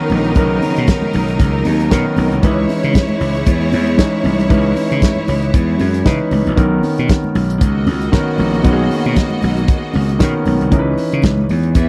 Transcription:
Already playing: grand piano D#3 B3 C#4 A#4, string section F#3 D#4 A#4
0.10 slap bass A#1, open hi-hat, high conga, low conga
0.24 closed hi-hat
0.35 slap bass B1, grand piano C#3 B3 C#4 A#4, kick, closed hi-hat
0.41 grand piano D#3
0.62 open hi-hat, muted conga, high conga
0.76 slap bass B2, closed hi-hat
0.87 kick, snare, closed hi-hat, high conga
1.02 low conga
1.13 slap bass B1, open hi-hat, muted conga, low conga
1.28 closed hi-hat
1.39 slap bass C#2, kick, closed hi-hat, muted conga
1.65 slap bass D#2, open hi-hat, muted conga, high conga
1.80 closed hi-hat
1.91 slap bass B2, grand piano D#3 B3 C#4 A#4, kick, snare, closed hi-hat, muted conga
2.17 slap bass B1, open hi-hat, muted conga, high conga, low conga
2.32 slap bass C2, closed hi-hat
2.43 slap bass C#2, grand piano E3 C#4 D#4 B4, string section G#3 E4 C#5, kick, closed hi-hat, muted conga
2.69 open hi-hat, muted conga, high conga
2.83 slap bass C#3, closed hi-hat
2.94 kick, snare, closed hi-hat, muted conga, high conga
3.09 low conga
3.21 slap bass C#2, open hi-hat, low conga
3.35 closed hi-hat
3.46 slap bass E2, kick, closed hi-hat, muted conga
3.72 slap bass E2, open hi-hat, high conga
3.87 closed hi-hat
3.98 grand piano E3 C#4 D#4 C#5, kick, snare, closed hi-hat, muted conga
4.24 slap bass C2, open hi-hat, muted conga, high conga, low conga
4.39 closed hi-hat
4.49 slap bass C#2, grand piano E3 C#4 D#4 B4, kick, closed hi-hat
4.76 open hi-hat, muted conga, high conga
4.91 slap bass C#3, closed hi-hat
5.00 kick, snare, closed hi-hat, muted conga, high conga
5.16 low conga
5.28 slap bass C#2, open hi-hat, muted conga, low conga
5.42 closed hi-hat
5.54 slap bass E2, kick, closed hi-hat, muted conga
5.79 slap bass F#2, open hi-hat, muted conga, high conga
5.94 closed hi-hat
6.05 slap bass C#3, grand piano E3 C#4 D#4 B4, kick, snare, closed hi-hat, muted conga
6.31 slap bass C#2, open hi-hat, high conga, low conga
6.47 slap bass A#1, closed hi-hat
6.56 slap bass B1, grand piano D#3 B3 C#4 A#4, kick, closed hi-hat
6.83 open hi-hat, muted conga, high conga
6.98 slap bass B2, closed hi-hat
7.08 kick, snare, closed hi-hat, muted conga, high conga
7.24 low conga
7.35 slap bass B1, open hi-hat, muted conga, low conga
7.50 closed hi-hat
7.60 slap bass C#2, string section A#3 F#4 D#5, kick, closed hi-hat, muted conga
7.87 slap bass C#2, open hi-hat, muted conga, high conga
8.01 closed hi-hat
8.12 grand piano D#3 B3 C#4 A#4, kick, snare, closed hi-hat
8.38 slap bass A#1, open hi-hat, high conga, low conga
8.54 closed hi-hat
8.64 slap bass B1, grand piano D#3 B3 C#4 F#4, kick, closed hi-hat, muted conga
8.72 grand piano G#4
8.90 open hi-hat, high conga
9.05 slap bass B2, closed hi-hat
9.15 kick, snare, closed hi-hat, high conga
9.30 low conga
9.42 slap bass B1, open hi-hat, low conga
9.56 closed hi-hat
9.68 kick, closed hi-hat, muted conga
9.94 slap bass C#2, open hi-hat, high conga
10.09 closed hi-hat
10.19 slap bass B2, grand piano D#3 B3 C#4 A#4, kick, snare, closed hi-hat, muted conga
10.46 slap bass B1, open hi-hat, high conga, low conga
10.61 slap bass C2, closed hi-hat
10.71 slap bass C#2, grand piano E3 C#4 D#4 A#4, kick, closed hi-hat, muted conga
10.79 grand piano B4
10.98 open hi-hat, muted conga, high conga
11.12 slap bass C#3, closed hi-hat
11.22 slap bass C#2, kick, snare, closed hi-hat, high conga
11.38 low conga
11.49 slap bass E2, open hi-hat, muted conga, low conga
11.63 closed hi-hat
11.75 slap bass E2, string section B3 G#4 E5, kick, closed hi-hat

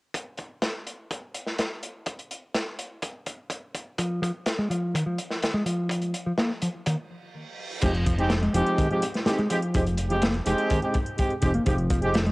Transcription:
0.14 kick, closed hi-hat
0.38 kick, closed hi-hat
0.62 snare, closed hi-hat
0.87 closed hi-hat
1.11 kick, closed hi-hat
1.35 closed hi-hat
1.47 snare
1.59 snare, closed hi-hat
1.83 closed hi-hat
2.06 kick, closed hi-hat
2.19 closed hi-hat
2.31 closed hi-hat
2.54 snare, closed hi-hat
2.79 closed hi-hat
3.02 kick, closed hi-hat
3.26 kick, closed hi-hat
3.50 kick, closed hi-hat
3.75 kick, closed hi-hat
3.98 picked electric bass F3, kick, closed hi-hat
4.22 picked electric bass F3, kick, closed hi-hat
4.46 snare, closed hi-hat
4.59 picked electric bass G#3
4.70 picked electric bass F3, closed hi-hat
4.94 picked electric bass D#3, kick, closed hi-hat
5.06 picked electric bass F3
5.18 closed hi-hat
5.31 snare
5.42 snare, closed hi-hat
5.54 picked electric bass G#3
5.66 picked electric bass F3, closed hi-hat
5.89 kick, closed hi-hat
6.02 closed hi-hat
6.14 closed hi-hat
6.26 picked electric bass F3
6.38 picked electric bass A#3, snare, closed hi-hat
6.62 picked electric bass F3, closed hi-hat
6.86 picked electric bass D#3, kick, closed hi-hat, reverse cymbal
7.82 analog synth bass F1, picked electric bass F3, brass ensemble G#3 C4 D#4 G4, kick, closed hi-hat, crash
7.95 closed hi-hat
8.06 picked electric bass F3, kick, closed hi-hat
8.18 brass ensemble G#3 C4 D#4 G4, closed hi-hat
8.30 snare, closed hi-hat
8.42 picked electric bass G#3, closed hi-hat
8.54 analog synth bass F1, picked electric bass F3, brass ensemble G#3 C4 D#4 G4, closed hi-hat
8.66 closed hi-hat
8.78 picked electric bass D#3, kick, closed hi-hat
8.90 picked electric bass F3, brass ensemble G#3 C4 D#4 G4, closed hi-hat
9.02 closed hi-hat
9.14 snare, closed hi-hat
9.26 brass ensemble G#3 C4 D#4 G4, snare, closed hi-hat
9.38 picked electric bass G#3, closed hi-hat
9.50 picked electric bass F3, brass ensemble G#3 C4 D#4 G4, closed hi-hat
9.62 closed hi-hat
9.74 analog synth bass F1, brass ensemble G#3 C4 D#4 G4, kick, closed hi-hat
9.86 closed hi-hat
9.98 closed hi-hat
10.10 picked electric bass F3, brass ensemble G#3 C4 D#4 G4, closed hi-hat
10.22 picked electric bass A#3, snare, closed hi-hat
10.34 closed hi-hat
10.46 analog synth bass F1, picked electric bass F3, brass ensemble G#3 C4 D#4 G4, closed hi-hat
10.58 closed hi-hat
10.70 picked electric bass D#3, kick, closed hi-hat
10.82 brass ensemble G#3 C4 D#4 G4, closed hi-hat
10.94 kick, closed hi-hat
11.06 closed hi-hat
11.18 brass ensemble G#3 C4 D#4 G4, kick, closed hi-hat
11.30 closed hi-hat
11.42 analog synth bass F1, brass ensemble G#3 C4 D#4 G4, kick, closed hi-hat
11.54 picked electric bass A#3, closed hi-hat
11.66 analog synth bass F1, picked electric bass F3, brass ensemble G#3 C4 D#4 G4, kick, closed hi-hat
11.78 closed hi-hat
11.90 picked electric bass F3, kick, closed hi-hat
12.02 brass ensemble G#3 C4 D#4 G4, closed hi-hat
12.14 snare, closed hi-hat
12.26 picked electric bass G#3, closed hi-hat

